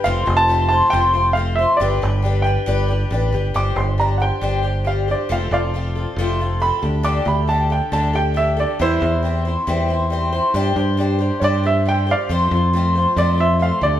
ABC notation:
X:1
M:4/4
L:1/16
Q:1/4=137
K:Gmix
V:1 name="Grand piano"
f3 a3 a2 g4 f2 e2 | d6 g8 z2 | d'2 c'2 _b2 [^fg]6 =f2 d2 | f2 [df]8 z2 b4 |
d'2 b2 a2 g2 a2 g2 e2 d2 | [Ec]12 z4 | z8 [^cd]2 e2 g2 [df]2 | z8 d2 e2 f2 d2 |]
V:2 name="Twelve-string acoustic guitar"
[F,A,CFc]2 [CFc]2 [A,CFc]2 [CFc]2 [F,A,CFc]2 [CFc]2 [A,CFc]2 [CFc]2 | [G,DGB]2 [DGB]2 [G,DGB]2 [DGB]2 [G,DGB]2 [DGB]2 [G,DGB]2 [DGB]2 | [G,DGc]2 [DGc]2 [G,DGc]2 [DGc]2 [G,DGc]2 [DGc]2 [G,DGc]2 [DGc]2 | [F,A,CFA]2 [CFA]2 [A,CFA]2 [CFA]2 [F,A,CFA]2 [CFA]2 [A,CFA]2 [DGA]2 |
[D,G,DGA]2 [DGA]2 [G,DGA]2 [DGA]2 [D,G,DGA]2 [DGA]2 [G,DGA]2 [DGA]2 | [E,G,CEc]2 [CEc]2 [G,CEc]2 [CEc]2 [E,G,CEc]2 [CEc]2 [G,CEc]2 [CEc]2 | [G,DGc]2 [DGc]2 [G,DGc]2 [DGc]2 [G,DGc]2 [DGc]2 [G,DGc]2 [DGc]2 | [F,A,CFc]2 [CFc]2 [A,CFc]2 [CFc]2 [F,A,CFc]2 [CFc]2 [A,CFc]2 [DGA]2 |]
V:3 name="Fingered electric bass" clef=bass
F,,,2 F,,,6 F,,,8 | G,,,2 G,,,6 G,,,4 A,,,2 G,,,2 | G,,,2 G,,,6 G,,,8 | F,,,2 F,,,6 F,,,6 D,,2- |
D,,2 D,,6 D,,8 | E,,2 E,,6 E,,8 | G,,2 G,,6 G,,8 | F,,2 F,,6 F,,6 D,,2 |]